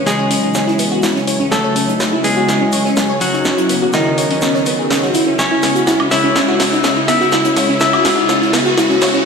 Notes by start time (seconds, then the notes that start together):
Already playing: C#2 C#3 E3 F#3 C#4, riser
0.06 G#3 C#4 G#4, snare, shaker
0.19 C#5
0.31 C#4, snare, open hi-hat, shaker
0.43 D#4
0.54 C#4, snare, shaker
0.67 E4, snare
0.79 B3, open hi-hat, shaker
0.92 F#4
1.03 E4, snare, shaker
1.16 C#4, snare
1.27 C#5, open hi-hat, shaker
1.40 C#4
1.51 C#2 A3 C#4 A4, snare, shaker
1.64 C#5
1.76 C#4, open hi-hat, shaker
1.88 D#4, closed hi-hat
2.00 C#4, snare, shaker
2.13 E4
2.24 G#3 B3 G#4, open hi-hat, shaker
2.37 F#4
2.48 E4, snare, shaker
2.61 C#4
2.72 C#5, open hi-hat, shaker
2.85 C#4, snare
2.97 C#4, snare, shaker
3.10 C#5
3.21 F#3 C#4 F#4, open hi-hat, shaker
3.33 D#4, snare
3.45 C#4, snare, shaker
3.58 E4, closed hi-hat
3.69 B3, open hi-hat, shaker
3.82 F#4
3.93 D#3 D#4 E4, snare, shaker
4.06 C#4
4.18 C#5, snare, open hi-hat, shaker
4.31 C#4, open hi-hat
4.42 C#4, snare, shaker
4.55 C#5, snare
4.66 B3, open hi-hat, shaker
4.79 G#4
4.90 C#4, snare, shaker
5.03 F#4, snare
5.14 E4, open hi-hat, shaker
5.27 C#4
5.39 C#2 C#3 G#3 C#4 E4 C#5, snare, shaker
5.51 E4
5.62 B3, snare, open hi-hat, shaker
5.76 F#4, closed hi-hat
5.87 E4, snare, shaker
6.00 C#4, high woodblock
6.11 E4 C#5 E5, snare, open hi-hat, shaker
6.24 C#4
6.36 C#4, snare, shaker
6.48 F#4
6.60 C#4, snare, open hi-hat, shaker
6.72 D#4, snare
6.84 C#4, snare, shaker
6.97 E4
7.08 B3 E4 E5, snare, open hi-hat, shaker
7.21 F#4, snare
7.32 E4, snare, shaker
7.45 C#4, closed hi-hat
7.57 C#5, snare, open hi-hat, shaker
7.69 C#4
7.80 C#4 E4 E5, snare, shaker
7.93 F#4, high woodblock
8.05 C#4, snare, open hi-hat, shaker
8.17 D#4
8.29 C#4, snare, shaker
8.42 E4, snare
8.53 B3, snare, open hi-hat, shaker
8.66 F#4
8.77 E4, snare, shaker
8.90 C#4, snare
9.01 C#5, snare, open hi-hat, shaker
9.14 C#4